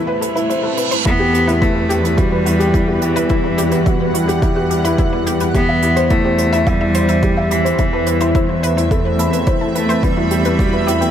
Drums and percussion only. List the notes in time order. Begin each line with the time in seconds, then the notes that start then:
0.22 closed hi-hat
0.37 closed hi-hat
0.50 closed hi-hat
0.78 closed hi-hat
0.91 closed hi-hat
1.06 kick, closed hi-hat
1.35 closed hi-hat
1.49 closed hi-hat
1.62 kick, closed hi-hat
1.90 closed hi-hat
2.05 closed hi-hat
2.18 kick, closed hi-hat
2.46 closed hi-hat
2.60 closed hi-hat
2.74 kick, closed hi-hat
3.02 closed hi-hat
3.16 closed hi-hat
3.29 kick, closed hi-hat
3.58 closed hi-hat
3.72 closed hi-hat
3.86 kick, closed hi-hat
4.15 closed hi-hat
4.29 closed hi-hat
4.42 kick, closed hi-hat
4.71 closed hi-hat
4.85 closed hi-hat
4.98 kick, closed hi-hat
5.27 closed hi-hat
5.40 closed hi-hat
5.54 kick, closed hi-hat
5.82 closed hi-hat
5.97 closed hi-hat
6.10 kick, closed hi-hat
6.38 closed hi-hat
6.53 closed hi-hat
6.67 kick, closed hi-hat
6.95 closed hi-hat
7.08 closed hi-hat
7.23 kick, closed hi-hat
7.51 closed hi-hat
7.66 closed hi-hat
7.78 kick, closed hi-hat
8.07 closed hi-hat
8.20 closed hi-hat
8.35 kick, closed hi-hat
8.64 closed hi-hat
8.78 closed hi-hat
8.91 kick, closed hi-hat
9.19 closed hi-hat
9.33 closed hi-hat
9.47 kick, closed hi-hat
9.76 closed hi-hat
9.90 closed hi-hat
10.03 kick, closed hi-hat
10.31 closed hi-hat
10.45 closed hi-hat
10.59 kick, closed hi-hat
10.88 closed hi-hat
11.02 closed hi-hat